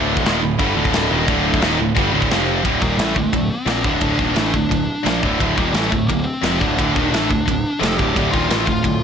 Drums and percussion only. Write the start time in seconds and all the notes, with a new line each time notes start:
0.17 kick
0.26 snare, china
0.59 kick, china
0.85 kick
0.93 snare, china
1.28 kick, china
1.54 kick
1.62 snare, china
1.97 kick, china
2.22 kick
2.31 snare, china
2.65 kick, ride bell
2.82 kick
2.99 snare, ride bell
3.16 kick
3.33 kick, ride bell
3.67 snare, ride bell
3.84 kick
4.01 kick, ride bell
4.19 kick
4.36 snare, ride bell
4.54 kick
4.71 kick, ride bell
5.06 snare, ride bell
5.23 kick
5.40 kick, ride bell
5.58 kick
5.74 snare, ride bell
5.92 kick
6.10 kick, ride bell
6.43 snare, ride bell
6.61 kick
6.79 kick, ride bell
6.96 kick
7.14 snare, ride bell
7.31 kick
7.48 kick, ride bell
7.83 snare, ride bell
7.99 kick
8.16 kick, ride bell
8.34 kick
8.50 snare, ride bell
8.67 kick
8.84 kick, ride bell